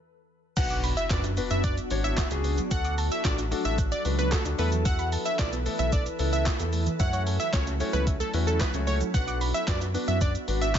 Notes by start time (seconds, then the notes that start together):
0.57 B1 B3 D4 F#4 B4 F#5 F#6, kick, closed hi-hat, crash, impact, shaker
0.70 D6, closed hi-hat, shaker
0.84 B5, open hi-hat, shaker
0.97 E5, closed hi-hat, shaker
1.10 F#2 D4 F#4 B4 D5, kick, snare, clap, closed hi-hat, shaker
1.24 D4, closed hi-hat, shaker
1.37 B3 D4 F#4 B4, open hi-hat, shaker
1.51 F#2 F#3 E5, closed hi-hat, shaker
1.64 D5 F#6, kick, closed hi-hat, shaker
1.77 closed hi-hat, shaker
1.91 G#1 D4 F#4 C#5, open hi-hat, shaker
2.04 E5, closed hi-hat, shaker
2.18 F#4, kick, snare, clap, closed hi-hat, shaker
2.31 C#2 D4 F#4 G#4, closed hi-hat, shaker
2.44 B3, open hi-hat, shaker
2.58 F#3, closed hi-hat, shaker
2.71 D2 F#3 D4 F#4 A4 F#5 F#6, kick, closed hi-hat, shaker
2.85 D6, closed hi-hat, shaker
2.98 A5, open hi-hat, shaker
3.12 E5, closed hi-hat, shaker
3.24 A1 D4 F#4 A4 D5, kick, snare, clap, closed hi-hat, shaker
3.38 D4, closed hi-hat, shaker
3.51 A3 D4 F#4 A4, open hi-hat, shaker
3.65 A1 F#3 E5, closed hi-hat, shaker
3.78 F#6, kick, closed hi-hat, shaker
3.92 D5, closed hi-hat, shaker
4.05 C#2 D4 F#4 B4, open hi-hat, shaker
4.19 B4, closed hi-hat, shaker
4.32 F#4 A4, kick, snare, clap, closed hi-hat, shaker
4.45 D2 D4 F#4 A4, closed hi-hat, shaker
4.58 E2 E3 A3 B3 E4 A4 B4, open hi-hat, shaker
4.72 E3, closed hi-hat, shaker
4.85 F#5 E6, kick, closed hi-hat, shaker
4.99 B5, closed hi-hat, shaker
5.12 A5, open hi-hat, shaker
5.25 E5, closed hi-hat, shaker
5.39 B1 B3 E4 A4 D5, kick, snare, clap, closed hi-hat, shaker
5.53 B3, closed hi-hat, shaker
5.66 A3 B3 E4 A4, open hi-hat, shaker
5.79 B1 E3 E5, closed hi-hat, shaker
5.92 D5 E6, kick, closed hi-hat, shaker
6.06 closed hi-hat, shaker
6.19 C#2 B3 E4 A4, open hi-hat, shaker
6.33 E5, closed hi-hat, shaker
6.46 E4, kick, snare, clap, closed hi-hat, shaker
6.59 E2 B3 E4 A4, closed hi-hat, shaker
6.73 A3, open hi-hat, shaker
6.86 E3, closed hi-hat, shaker
6.99 F#2 F#3 A3 C#4 E4 F#4 C#5 E5 F#5, kick, closed hi-hat, shaker
7.13 C#5, closed hi-hat, shaker
7.27 A4, open hi-hat, shaker
7.40 E5, closed hi-hat, shaker
7.53 C#2 A3 C#4 E4 F#4 C#5, kick, snare, clap, closed hi-hat, shaker
7.67 C#4, closed hi-hat, shaker
7.80 A3 C#4 E4 F#4 C#5, open hi-hat, shaker
7.93 C#2 F#3 B4, closed hi-hat, shaker
8.07 E5, kick, closed hi-hat, shaker
8.20 A4, closed hi-hat, shaker
8.34 E2 A3 C#4 E4 F#4 B4, open hi-hat, shaker
8.47 A4, closed hi-hat, shaker
8.60 E4 B4, kick, snare, clap, closed hi-hat, shaker
8.74 C#2 A3 C#4 E4 F#4 C#5, closed hi-hat, shaker
8.87 A3 C#5, open hi-hat, shaker
9.01 F#3, closed hi-hat, shaker
9.14 B1 B3 D4 F#4 B4 F#5 F#6, kick, closed hi-hat, shaker
9.28 D6, closed hi-hat, shaker
9.41 B5, open hi-hat, shaker
9.54 E5, closed hi-hat, shaker
9.67 F#2 D4 F#4 B4 D5, kick, snare, clap, closed hi-hat, shaker
9.81 D4, closed hi-hat, shaker
9.94 B3 D4 F#4 B4, open hi-hat, shaker
10.08 F#2 F#3 E5, closed hi-hat, shaker
10.21 D5 F#6, kick, closed hi-hat, shaker
10.35 closed hi-hat, shaker
10.48 G#1 D4 F#4 B4, open hi-hat, shaker
10.62 E5, closed hi-hat, shaker
10.75 F#4, kick, snare, clap, closed hi-hat, shaker